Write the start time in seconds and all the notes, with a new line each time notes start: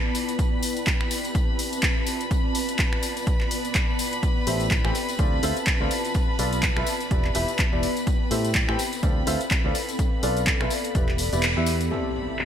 Already playing: B3 E4 B4 D5 B5
0.15 open hi-hat, tambourine
0.29 closed hi-hat, tambourine
0.39 C4, kick, closed hi-hat, tambourine
0.61 A5, open hi-hat, tambourine
0.76 closed hi-hat, tambourine
0.86 kick, clap, closed hi-hat, tambourine
1.01 finger snap
1.11 open hi-hat, tambourine
1.25 closed hi-hat, tambourine
1.35 D5, kick, closed hi-hat, tambourine
1.55 F4
1.59 open hi-hat, tambourine
1.73 closed hi-hat, tambourine
1.83 kick, clap, closed hi-hat, tambourine
2.06 B3, open hi-hat, tambourine
2.21 closed hi-hat, tambourine
2.31 kick, closed hi-hat, tambourine
2.55 open hi-hat, tambourine
2.69 closed hi-hat, tambourine
2.79 kick, clap, closed hi-hat, tambourine
2.93 finger snap
3.03 open hi-hat, tambourine
3.17 closed hi-hat, tambourine
3.27 kick, closed hi-hat, tambourine
3.41 clap
3.51 open hi-hat, tambourine
3.65 closed hi-hat, tambourine
3.75 kick, clap, closed hi-hat, tambourine
3.99 open hi-hat, tambourine
4.13 closed hi-hat, tambourine
4.23 C4, kick, closed hi-hat, tambourine
4.47 A1 G4 A4 C5 E5, open hi-hat, tambourine
4.57 A5, closed hi-hat, tambourine
4.70 kick, clap, closed hi-hat, tambourine
4.85 A1 G4 A4 C5 G5, finger snap
4.95 open hi-hat, tambourine
5.09 closed hi-hat, tambourine
5.19 D2 F4 A4 C5 D5, kick, closed hi-hat, tambourine
5.39 D2 D5, open hi-hat
5.43 F4 A4 C5 E5, tambourine
5.57 closed hi-hat, tambourine
5.67 kick, clap, closed hi-hat, tambourine
5.81 D2 F4 A4 C5 D5
5.91 B3, open hi-hat, tambourine
6.05 closed hi-hat, tambourine
6.14 kick, closed hi-hat, tambourine
6.39 B1 F4 A4 B4 D5, open hi-hat, tambourine
6.53 closed hi-hat, tambourine
6.63 kick, clap, closed hi-hat, tambourine
6.77 B1 F4 A4 B4 E5, finger snap
6.86 open hi-hat, tambourine
7.01 closed hi-hat, tambourine
7.11 E1 E4 G4 B4 D5, kick, closed hi-hat, tambourine
7.25 clap
7.35 E1 E4 G4 B4 E5, open hi-hat, tambourine
7.48 closed hi-hat, tambourine
7.55 G5, tambourine
7.59 kick, clap, closed hi-hat
7.73 E1 E4 G4 B4 D5
7.83 open hi-hat, tambourine
7.97 closed hi-hat, tambourine
8.07 C4, kick, closed hi-hat, tambourine
8.31 A2 G4 A4 C5 E5, open hi-hat, tambourine
8.41 A4
8.45 closed hi-hat, tambourine
8.55 kick, clap, closed hi-hat, tambourine
8.69 A2 G4 A4 C5 G5, finger snap
8.79 open hi-hat, tambourine
8.93 closed hi-hat, tambourine
9.03 D2 F4 A4 C5 D5, kick, closed hi-hat, tambourine
9.23 D5 F5
9.27 D2 F4 A4 C5 E5, open hi-hat, tambourine
9.41 closed hi-hat, tambourine
9.51 kick, clap, closed hi-hat, tambourine
9.65 D2 F4 A4 C5 D5
9.75 B3, open hi-hat, tambourine
9.89 closed hi-hat, tambourine
9.99 kick, closed hi-hat, tambourine
10.23 B1 F4 A4 B4 D5, open hi-hat, tambourine
10.37 closed hi-hat, tambourine
10.47 kick, clap, closed hi-hat, tambourine
10.61 B1 F4 A4 B4 E5, finger snap
10.70 open hi-hat, tambourine
10.84 closed hi-hat, tambourine
10.95 E1 E4 G4 B4 D5, kick, closed hi-hat, tambourine
11.09 clap
11.18 open hi-hat, tambourine
11.33 E1 E4 G4 B4 D5, closed hi-hat, tambourine
11.39 G4 E5, tambourine
11.43 clap, closed hi-hat
11.57 E2 E4 G4 B4 E5
11.66 open hi-hat, tambourine
11.81 closed hi-hat, tambourine
11.91 C4 E4 G4 A4 B5, impact, cabasa
12.05 cabasa
12.16 cabasa
12.25 A5
12.29 cabasa
12.39 clap, cabasa